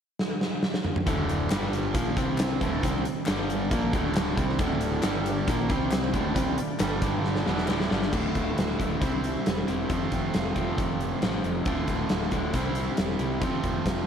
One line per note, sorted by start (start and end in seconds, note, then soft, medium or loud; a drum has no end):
0.19 snare medium
0.41 snare medium
0.63 snare medium
0.74 snare medium
0.85 mid tom medium
0.96 mid tom medium
1.07 1.48 D1 medium
1.07 1.50 D2 medium
1.07 1.50 A2 medium
1.07 1.50 D3 medium
1.07 kick medium
1.07 closed hi-hat medium
1.29 closed hi-hat medium
1.50 1.92 G1 medium
1.50 1.94 G2 medium
1.50 1.94 D3 medium
1.50 1.94 G3 medium
1.50 snare loud
1.50 clap medium
1.50 closed hi-hat loud
1.73 closed hi-hat medium
1.94 2.15 A#1 medium
1.94 2.16 A#2 medium
1.94 2.16 F3 medium
1.94 2.16 A#3 medium
1.94 kick loud
1.94 closed hi-hat loud
2.17 2.58 C2 medium
2.17 2.60 C3 medium
2.17 2.61 G3 medium
2.17 2.61 C4 loud
2.17 kick medium
2.17 closed hi-hat medium
2.38 snare loud
2.38 clap loud
2.38 closed hi-hat loud
2.61 2.82 D1 medium
2.61 2.82 D2 medium
2.61 2.83 A2 medium
2.61 2.83 D3 medium
2.61 kick medium
2.61 closed hi-hat medium
2.82 3.04 C2 medium
2.82 3.04 C3 medium
2.82 3.04 G3 medium
2.82 3.05 C4 loud
2.82 kick loud
2.82 closed hi-hat loud
3.05 muted overdriven electric guitar stroke medium
3.05 muted distorted electric guitar stroke medium
3.05 closed hi-hat medium
3.26 3.69 G1 medium
3.26 3.70 G2 medium
3.26 3.71 D3 medium
3.26 3.71 G3 loud
3.26 snare loud
3.26 clap loud
3.26 closed hi-hat medium
3.50 closed hi-hat medium
3.71 3.92 A#1 loud
3.71 3.93 A#2 medium
3.71 3.93 F3 medium
3.71 3.93 A#3 loud
3.71 kick loud
3.71 closed hi-hat medium
3.93 4.35 D1 medium
3.93 4.36 D2 medium
3.93 4.37 A2 medium
3.93 4.37 D3 medium
3.93 kick loud
3.93 closed hi-hat medium
4.15 snare loud
4.15 clap medium
4.15 closed hi-hat medium
4.37 4.58 C2 medium
4.37 4.59 C3 medium
4.37 4.59 G3 loud
4.37 4.59 C4 medium
4.37 kick medium
4.37 closed hi-hat medium
4.49 snare soft
4.58 5.01 D1 medium
4.58 5.02 D2 medium
4.58 5.02 A2 medium
4.58 5.02 D3 loud
4.58 5.03 A3 medium
4.58 5.03 D4 medium
4.58 5.03 F4 medium
4.58 5.03 D5 medium
4.58 kick loud
4.58 closed hi-hat medium
4.81 closed hi-hat medium
5.02 5.45 G1 medium
5.02 5.46 G2 medium
5.02 5.47 D3 loud
5.02 5.47 G3 loud
5.02 5.48 D4 medium
5.02 5.47 G4 medium
5.02 5.48 D5 medium
5.02 snare loud
5.02 clap medium
5.02 closed hi-hat medium
5.26 closed hi-hat medium
5.47 5.69 A#1 loud
5.47 5.68 A#2 medium
5.47 5.69 F3 medium
5.47 5.69 A#3 loud
5.47 kick loud
5.47 closed hi-hat loud
5.69 6.11 C2 medium
5.69 6.12 C3 medium
5.69 6.13 G3 medium
5.69 6.13 C4 loud
5.69 6.14 C4 medium
5.69 6.14 G4 medium
5.69 6.15 C5 medium
5.69 kick loud
5.69 closed hi-hat medium
5.92 snare loud
5.92 clap medium
5.92 closed hi-hat medium
6.13 6.34 D1 loud
6.13 6.34 D2 medium
6.13 6.35 A2 loud
6.13 6.35 D3 loud
6.13 7.02 A3 medium
6.13 7.03 D4 medium
6.13 7.03 F4 medium
6.13 7.03 D5 medium
6.13 kick medium
6.13 closed hi-hat medium
6.35 6.57 C2 medium
6.35 6.57 C3 medium
6.35 6.57 G3 loud
6.35 6.58 C4 loud
6.35 kick loud
6.35 closed hi-hat loud
6.58 muted overdriven electric guitar stroke medium
6.58 muted distorted electric guitar stroke medium
6.58 muted picked electric bass stroke soft
6.58 closed hi-hat medium
6.79 7.01 G1 medium
6.79 7.01 G2 medium
6.79 7.01 D3 loud
6.79 7.02 G3 loud
6.79 snare loud
6.79 clap medium
6.79 closed hi-hat loud
7.02 7.43 G1 medium
7.02 7.45 G2 medium
7.02 7.45 D3 loud
7.02 7.46 G3 loud
7.02 7.45 D4 medium
7.02 7.48 G4 medium
7.02 7.46 D5 medium
7.02 kick loud
7.02 closed hi-hat medium
7.24 snare medium
7.36 snare medium
7.46 7.67 E1 medium
7.46 7.67 E2 medium
7.46 7.68 B2 medium
7.46 7.68 E3 medium
7.46 8.12 A3 medium
7.46 8.12 D4 medium
7.46 8.12 F4 medium
7.46 8.13 D5 medium
7.46 snare medium
7.58 snare medium
7.67 7.90 D1 medium
7.67 7.89 D2 medium
7.67 7.89 A2 medium
7.67 7.89 D3 medium
7.67 snare medium
7.67 clap medium
7.81 snare medium
7.89 8.12 G1 medium
7.89 8.11 G2 medium
7.89 8.12 D3 loud
7.89 8.12 G3 medium
7.89 snare medium
8.02 snare medium
8.11 8.30 D1 medium
8.11 8.77 D2 medium
8.11 8.78 A2 medium
8.11 8.77 D3 medium
8.11 9.01 A3 medium
8.11 9.01 F4 medium
8.11 kick medium
8.11 crash medium
8.35 8.52 D1 medium
8.35 kick medium
8.35 closed hi-hat medium
8.58 8.75 D1 medium
8.58 snare medium
8.58 closed hi-hat medium
8.71 snare soft
8.79 8.96 D1 medium
8.79 9.00 D2 medium
8.79 9.00 A2 medium
8.79 9.00 D3 medium
8.79 kick medium
8.79 closed hi-hat medium
9.01 9.35 C2 medium
9.01 9.66 C3 medium
9.01 9.67 G3 medium
9.01 9.66 C4 medium
9.01 9.89 E4 medium
9.01 9.90 G4 medium
9.01 9.90 C5 medium
9.01 kick loud
9.01 closed hi-hat medium
9.24 closed hi-hat medium
9.46 9.63 E1 medium
9.46 snare loud
9.46 closed hi-hat medium
9.67 9.85 E1 medium
9.67 9.89 C3 medium
9.67 9.89 G3 medium
9.67 9.88 C4 medium
9.67 closed hi-hat medium
9.89 10.07 F1 medium
9.89 10.54 F2 medium
9.89 10.55 C3 medium
9.89 10.54 F3 medium
9.89 11.66 A3 medium
9.89 kick medium
9.89 closed hi-hat medium
9.93 11.67 C4 medium
9.93 11.67 F4 medium
10.12 10.29 F1 medium
10.12 kick medium
10.12 closed hi-hat medium
10.34 10.51 F1 medium
10.34 snare medium
10.34 closed hi-hat medium
10.55 10.73 F1 medium
10.55 11.20 F2 medium
10.55 11.21 C3 medium
10.55 11.21 F3 medium
10.55 kick medium
10.55 closed hi-hat soft
10.78 11.12 F1 medium
10.78 kick loud
10.78 closed hi-hat medium
11.01 closed hi-hat soft
11.21 11.39 A1 medium
11.21 11.64 F2 medium
11.21 11.65 C3 medium
11.21 11.66 F3 medium
11.21 snare loud
11.21 closed hi-hat medium
11.44 11.61 F1 medium
11.44 closed hi-hat soft
11.66 11.83 D1 medium
11.66 12.31 D2 medium
11.66 12.31 A2 medium
11.66 12.31 D3 medium
11.66 12.54 A3 medium
11.66 12.55 F4 loud
11.66 kick loud
11.66 closed hi-hat medium
11.88 12.05 D1 medium
11.88 kick medium
11.88 closed hi-hat soft
12.09 12.27 D1 medium
12.09 snare loud
12.09 closed hi-hat medium
12.22 snare soft
12.32 12.49 D1 medium
12.32 12.53 D2 medium
12.32 12.53 A2 medium
12.32 12.53 D3 medium
12.32 kick medium
12.32 closed hi-hat soft
12.54 12.88 C2 medium
12.54 13.19 C3 medium
12.54 13.19 G3 medium
12.54 13.19 C4 medium
12.54 13.42 E4 medium
12.54 13.42 G4 medium
12.54 13.42 C5 medium
12.54 kick medium
12.54 closed hi-hat medium
12.75 closed hi-hat medium
12.97 13.15 E1 medium
12.97 snare loud
12.97 closed hi-hat medium
13.19 13.43 C2 medium
13.19 13.41 C3 medium
13.19 13.41 G3 medium
13.19 13.41 C4 medium
13.19 closed hi-hat soft
13.41 13.58 F1 medium
13.41 14.06 F2 medium
13.41 14.07 C3 medium
13.41 14.06 F3 medium
13.41 14.07 A3 medium
13.41 14.07 C4 medium
13.41 14.07 F4 medium
13.41 kick medium
13.41 closed hi-hat medium
13.64 13.81 F1 medium
13.64 kick medium
13.64 closed hi-hat medium
13.86 14.03 F1 medium
13.86 kick medium
13.86 snare loud
13.86 closed hi-hat medium